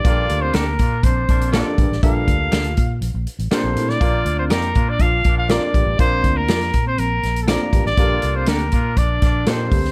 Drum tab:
HH |x-x-x-x-x-xxx-x-|x-x-xxx-x-xxx-x-|x-x-xxx-x-x-x-x-|x-x-xxx-x-xxx-x-|
SD |----o-------o--o|----o-------o--o|----o-------o---|----oo----o-o--o|
BD |o-----o-o-o---o-|o-o---o---------|o-----o-o-o---o-|o-o---o-------o-|

HH |x-x-xxx-x-x-x-o-|
SD |----o-----o-o--o|
BD |o-----o-o-o---o-|